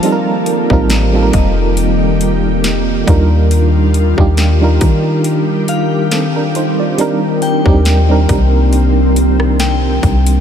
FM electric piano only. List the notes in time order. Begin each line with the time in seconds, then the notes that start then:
Already playing: D5
0.03 G3 C4 D#4 F4 A4
0.12 A#4
0.70 G3 C4 D#4 F4 A#4
1.13 G3 C4 D#4 F4 A4
1.23 A#4
3.07 G3 D4 D#4 F4 A#4
4.17 G3 D4 D#4 F4 G4
4.61 G3 D4 D#4 F4 A#4
6.13 C4 A4
6.36 D4 A#4
6.56 D#4 C5
6.80 F4 D5
6.98 G3 C4 D4 D#4 A#4
7.65 G3 C4 D4 D#4 G4
8.08 G3 C4 D4 D#4 A#4